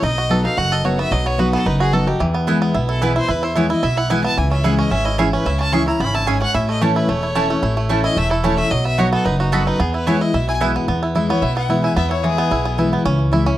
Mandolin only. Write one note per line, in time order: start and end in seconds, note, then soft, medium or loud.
2.47 2.57 B3 medium
2.47 2.57 E4 medium
2.47 2.57 B4 medium
2.47 2.57 G#5 loud
3.02 3.11 B3 medium
3.02 3.12 E4 medium
3.02 3.12 B4 loud
3.02 3.12 G#5 medium
3.56 3.66 B3 medium
3.56 3.66 E4 medium
3.56 3.66 B4 medium
3.56 3.66 G#5 medium
4.10 4.20 B3 medium
4.10 4.20 E4 medium
4.10 4.20 B4 loud
4.10 4.20 G#5 loud
4.64 4.74 C#4 medium
4.64 4.74 G#4 medium
4.64 4.74 E5 medium
4.64 4.74 G#5 medium
5.18 5.28 C#4 medium
5.18 5.28 G#4 medium
5.18 5.28 E5 medium
5.18 5.28 G#5 medium
5.73 5.82 C#4 medium
5.73 5.83 G#4 medium
5.73 5.83 E5 medium
5.73 5.83 G#5 medium
6.27 6.36 C#4 medium
6.27 6.37 G#4 medium
6.27 6.37 E5 medium
6.27 6.37 G#5 loud
6.81 6.91 A3 medium
6.81 6.91 E4 medium
6.81 6.91 C#5 medium
6.81 6.91 A5 loud
7.35 7.45 A3 medium
7.35 7.45 E4 medium
7.35 7.45 C#5 loud
7.35 7.45 A5 loud
7.89 7.99 A3 medium
7.89 7.99 E4 medium
7.89 7.99 C#5 medium
7.89 8.00 A5 medium
8.44 8.53 A3 medium
8.44 8.54 E4 medium
8.44 8.54 C#5 medium
8.44 8.54 A5 loud
8.98 9.08 B3 medium
8.98 9.08 F#4 medium
8.98 9.08 D#5 medium
8.98 9.08 B5 medium
9.52 9.62 B3 medium
9.52 9.62 F#4 loud
9.52 9.62 D#5 loud
9.52 9.62 B5 loud
10.07 10.16 B3 medium
10.07 10.16 E4 medium
10.07 10.17 B4 medium
10.07 10.17 G#5 medium
10.61 10.70 B3 medium
10.61 10.70 E4 medium
10.61 10.71 B4 medium
10.61 10.71 G#5 loud